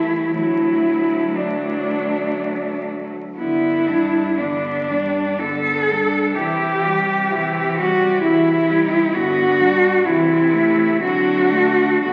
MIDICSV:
0, 0, Header, 1, 5, 480
1, 0, Start_track
1, 0, Key_signature, 1, "major"
1, 0, Tempo, 1010101
1, 167, Time_signature, 3, 2, 24, 8
1, 2569, Tempo, 956938
1, 3529, Tempo, 916031
1, 4969, Tempo, 960000
1, 5449, Tempo, 1020408
1, 5967, End_track
2, 0, Start_track
2, 0, Title_t, "Cello"
2, 0, Program_c, 0, 42
2, 0, Note_on_c, 0, 64, 64
2, 170, Note_off_c, 0, 64, 0
2, 173, Note_on_c, 0, 64, 56
2, 648, Note_on_c, 0, 62, 44
2, 655, Note_off_c, 0, 64, 0
2, 1369, Note_off_c, 0, 62, 0
2, 1606, Note_on_c, 0, 64, 61
2, 2078, Note_on_c, 0, 62, 49
2, 2085, Note_off_c, 0, 64, 0
2, 2562, Note_on_c, 0, 69, 62
2, 2569, Note_off_c, 0, 62, 0
2, 3042, Note_on_c, 0, 67, 57
2, 3050, Note_off_c, 0, 69, 0
2, 3760, Note_off_c, 0, 67, 0
2, 3763, Note_on_c, 0, 66, 73
2, 3993, Note_off_c, 0, 66, 0
2, 3997, Note_on_c, 0, 64, 70
2, 4484, Note_on_c, 0, 66, 85
2, 4491, Note_off_c, 0, 64, 0
2, 4958, Note_on_c, 0, 64, 68
2, 4966, Note_off_c, 0, 66, 0
2, 5436, Note_off_c, 0, 64, 0
2, 5439, Note_on_c, 0, 66, 80
2, 5913, Note_off_c, 0, 66, 0
2, 5918, Note_on_c, 0, 66, 70
2, 5967, Note_off_c, 0, 66, 0
2, 5967, End_track
3, 0, Start_track
3, 0, Title_t, "Cello"
3, 0, Program_c, 1, 42
3, 0, Note_on_c, 1, 57, 49
3, 160, Note_off_c, 1, 57, 0
3, 162, Note_on_c, 1, 57, 44
3, 633, Note_off_c, 1, 57, 0
3, 640, Note_on_c, 1, 57, 43
3, 1488, Note_off_c, 1, 57, 0
3, 1600, Note_on_c, 1, 59, 44
3, 1840, Note_on_c, 1, 62, 37
3, 1847, Note_off_c, 1, 59, 0
3, 2073, Note_on_c, 1, 59, 40
3, 2080, Note_off_c, 1, 62, 0
3, 2321, Note_on_c, 1, 62, 34
3, 2328, Note_off_c, 1, 59, 0
3, 2565, Note_off_c, 1, 62, 0
3, 2567, Note_on_c, 1, 59, 36
3, 2811, Note_on_c, 1, 62, 39
3, 2818, Note_off_c, 1, 59, 0
3, 3048, Note_off_c, 1, 62, 0
3, 3051, Note_on_c, 1, 64, 43
3, 3289, Note_on_c, 1, 67, 37
3, 3297, Note_off_c, 1, 64, 0
3, 3529, Note_on_c, 1, 64, 40
3, 3537, Note_off_c, 1, 67, 0
3, 3771, Note_on_c, 1, 67, 46
3, 3779, Note_off_c, 1, 64, 0
3, 4011, Note_off_c, 1, 67, 0
3, 4014, Note_on_c, 1, 64, 45
3, 4255, Note_on_c, 1, 67, 44
3, 4262, Note_off_c, 1, 64, 0
3, 4485, Note_off_c, 1, 67, 0
3, 4488, Note_on_c, 1, 59, 55
3, 4727, Note_on_c, 1, 62, 53
3, 4735, Note_off_c, 1, 59, 0
3, 4963, Note_off_c, 1, 62, 0
3, 4966, Note_on_c, 1, 60, 51
3, 5203, Note_on_c, 1, 64, 52
3, 5211, Note_off_c, 1, 60, 0
3, 5442, Note_off_c, 1, 64, 0
3, 5445, Note_on_c, 1, 60, 52
3, 5688, Note_on_c, 1, 62, 48
3, 5695, Note_off_c, 1, 60, 0
3, 5927, Note_off_c, 1, 62, 0
3, 5930, Note_on_c, 1, 59, 54
3, 5967, Note_off_c, 1, 59, 0
3, 5967, End_track
4, 0, Start_track
4, 0, Title_t, "Cello"
4, 0, Program_c, 2, 42
4, 0, Note_on_c, 2, 52, 49
4, 156, Note_off_c, 2, 52, 0
4, 168, Note_on_c, 2, 54, 49
4, 635, Note_off_c, 2, 54, 0
4, 643, Note_on_c, 2, 54, 41
4, 1490, Note_off_c, 2, 54, 0
4, 1611, Note_on_c, 2, 50, 41
4, 1845, Note_on_c, 2, 55, 40
4, 1852, Note_off_c, 2, 50, 0
4, 2085, Note_on_c, 2, 50, 34
4, 2092, Note_off_c, 2, 55, 0
4, 2327, Note_on_c, 2, 55, 35
4, 2334, Note_off_c, 2, 50, 0
4, 2568, Note_off_c, 2, 55, 0
4, 2571, Note_on_c, 2, 50, 35
4, 2820, Note_on_c, 2, 55, 36
4, 2827, Note_off_c, 2, 50, 0
4, 3053, Note_off_c, 2, 55, 0
4, 3056, Note_on_c, 2, 52, 45
4, 3298, Note_on_c, 2, 55, 41
4, 3305, Note_off_c, 2, 52, 0
4, 3530, Note_on_c, 2, 52, 43
4, 3538, Note_off_c, 2, 55, 0
4, 3778, Note_on_c, 2, 55, 47
4, 3786, Note_off_c, 2, 52, 0
4, 4010, Note_off_c, 2, 55, 0
4, 4013, Note_on_c, 2, 52, 48
4, 4254, Note_on_c, 2, 55, 48
4, 4262, Note_off_c, 2, 52, 0
4, 4490, Note_off_c, 2, 55, 0
4, 4493, Note_on_c, 2, 50, 59
4, 4725, Note_on_c, 2, 55, 55
4, 4733, Note_off_c, 2, 50, 0
4, 4963, Note_off_c, 2, 55, 0
4, 4966, Note_on_c, 2, 52, 48
4, 5201, Note_on_c, 2, 57, 55
4, 5209, Note_off_c, 2, 52, 0
4, 5446, Note_off_c, 2, 57, 0
4, 5451, Note_on_c, 2, 54, 51
4, 5679, Note_on_c, 2, 57, 43
4, 5686, Note_off_c, 2, 54, 0
4, 5920, Note_off_c, 2, 57, 0
4, 5923, Note_on_c, 2, 50, 51
4, 5967, Note_off_c, 2, 50, 0
4, 5967, End_track
5, 0, Start_track
5, 0, Title_t, "Cello"
5, 0, Program_c, 3, 42
5, 0, Note_on_c, 3, 36, 44
5, 166, Note_on_c, 3, 38, 48
5, 173, Note_off_c, 3, 36, 0
5, 1507, Note_off_c, 3, 38, 0
5, 1606, Note_on_c, 3, 43, 44
5, 3030, Note_off_c, 3, 43, 0
5, 3043, Note_on_c, 3, 48, 47
5, 4466, Note_off_c, 3, 48, 0
5, 4486, Note_on_c, 3, 43, 52
5, 4968, Note_on_c, 3, 48, 59
5, 4976, Note_off_c, 3, 43, 0
5, 5446, Note_off_c, 3, 48, 0
5, 5449, Note_on_c, 3, 50, 62
5, 5918, Note_off_c, 3, 50, 0
5, 5926, Note_on_c, 3, 43, 48
5, 5967, Note_off_c, 3, 43, 0
5, 5967, End_track
0, 0, End_of_file